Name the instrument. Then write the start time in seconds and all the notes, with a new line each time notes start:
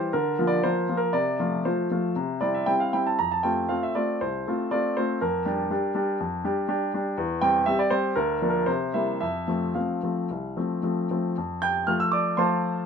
grand piano
Already playing: E3 G3 G4 C5
0.13 D3 A#4
0.39 F3 A#3 F4
0.47 D5
0.63 F3 A#3 F4 C5
0.89 F3 A#3 F4
0.97 A#4
1.13 C3 D5
1.40 F3 A3 F4
1.65 F3 A3 F4 C5
1.91 F3 A3 F4
2.16 C3
2.41 G3 C4 E4 D5
2.54 E5
2.66 G3 C4 E4 G5
2.80 F5
2.93 G3 C4 E4 G5
3.07 A5
3.19 F2 A#5
3.32 A5
3.43 A3 C4 F4 G5
3.69 A3 C4 F4 F5
3.83 E5
3.95 A3 C4 F4 D5
4.21 C2 C5
4.47 A3 C4 F4
4.71 A3 C4 F4 D5
4.97 A3 C4 F4 C5
5.21 F2 A#4
5.46 G3 D4 G4
5.70 G3 D4 G4
5.95 G3 D4 G4
6.20 F2
6.44 G3 D4 G4
6.68 G3 D4 G4
6.94 G3 D4 G4
7.18 E2
7.41 G3 C4 G4 G5
7.66 G3 C4 G4 E5
7.79 D5
7.90 G3 C4 G4 C5
8.16 D2 A#4
8.42 F3 A#3 D4
8.49 A#4
8.66 C3 C5
8.94 G3 A#3 E4 E5
9.21 F2 E5
9.48 F3 A3 C4
9.75 F3 A3 C4 F5
10.03 F3 A3 C4
10.31 C2
10.57 F3 A3 C4
10.83 F3 A3 C4
11.11 F3 A3 C4
11.38 F2
11.62 G5 G6
11.87 F3 A3 F4 F6
12.00 E6
12.12 D5 D6
12.37 F3 A3 F4 C5 A5 C6